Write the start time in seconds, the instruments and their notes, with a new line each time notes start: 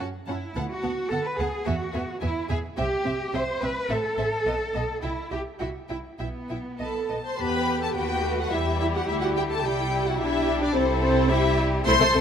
0.26 double bass section F#2, viola section C#4, cello section E4, violin section F#5 A5
0.55 double bass section D2, viola section B3, violin section F#5 A5
0.69 cello section F#4
0.82 double bass section D2, viola section B3, violin section F#5 A5
1.11 double bass section D2, viola section B3, cello section A4, violin section F#5 A5
1.25 cello section B4
1.38 double bass section D2, viola section B3, cello section G#4, violin section F#5 A5
1.66 double bass section E2, viola section B3, cello section F#4, violin section E5 G#5
1.93 double bass section E2, viola section B3, violin section E5 G#5
2.21 double bass section E2, viola section B3, cello section E4, violin section E5 G#5
2.49 double bass section E2, viola section B3, cello section G#4, violin section E5 G#5
2.77 double bass section C2, viola section C4, cello section G4, violin section E5 G5
3.05 double bass section C2, viola section C4, violin section E5 G5
3.33 double bass section C2, viola section C4, cello section C5, violin section E5 G5
3.61 double bass section C2, viola section C4, cello section B4, violin section E5 G5
3.89 double bass section A1, viola section C4, cello section A4, violin section E5 A5
4.17 double bass section A1, viola section C4, violin section E5 A5
4.45 double bass section B1, viola section B3, violin section D#5 A5
4.74 double bass section B1, viola section B3, violin section D#5 A5
5.02 double bass section C2, viola section E4, cello section E4, violin section E5 G5
5.31 double bass section C2, viola section E4, cello section G4, violin section E5 G5
5.59 double bass section C2, viola section E4, cello section F#4, violin section E5 G5
5.88 double bass section C2, viola section E4, cello section E4, violin section E5 G5
6.19 double bass section B1, cello section B3, viola section E4, violin section E5 G5
6.49 double bass section B1, viola section E4, violin section E5 G5
6.79 double bass section B1, viola section B3 A4, violin section D#5 A5 B5
7.09 double bass section B1, viola section B3, violin section D#5 A5
7.25 viola section C5, violin section C6
7.38 double bass section E2, violin section B3 G4 B5, cello section G4, viola section B4
7.81 viola section A4, violin section A5
7.95 double bass section D#2, violin section B3 F#4 G5, viola section G4, cello section B4
8.24 violin section A3
8.38 viola section F#4, violin section F#5
8.51 double bass section E2, violin section G3 E4 E5, viola section E4, cello section G4
8.80 viola section E4, violin section E5
8.94 viola section F#4, violin section F#5
9.06 double bass section D2, violin section G3 E4 E5, viola section E4
9.22 viola section F#4, violin section F#5
9.35 viola section G4, violin section G5
9.50 viola section A4, violin section A5
9.62 double bass section C2, violin section G3 E4 G5, cello section E4, viola section G4
10.05 viola section F#4, violin section F#5
10.18 double bass section B1, violin section G3 D4 E5, viola section E4, cello section G4
10.60 viola section D4, violin section D5
10.74 double bass section C2, violin section G3 E4 C5, viola section C4, cello section A4
11.02 viola section C4, violin section C5
11.30 violin section G3 E4 E5, viola section E4, cello section G4
11.85 double bass section C2, violin section A3 E4 C6, cello section A4, viola section C5
12.00 double bass section C2, violin section A3
12.13 double bass section C2, violin section A3 C4